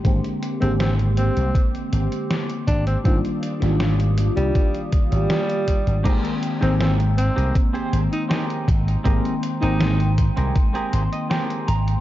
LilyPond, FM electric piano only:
\new Staff \with { instrumentName = "FM electric piano" } { \time 4/4 \key aes \lydian \tempo 4 = 80 <d aes bes c' g'>8. <d aes bes c' g'>2.~ <d aes bes c' g'>16 | <ees g bes d' f'>8. <ees g bes d' f'>2.~ <ees g bes d' f'>16 | <ees aes bes c' g''>8. <ees aes bes c' g''>2.~ <ees aes bes c' g''>16 | <ees aes bes c' g''>8. <ees aes bes c' g''>2.~ <ees aes bes c' g''>16 | }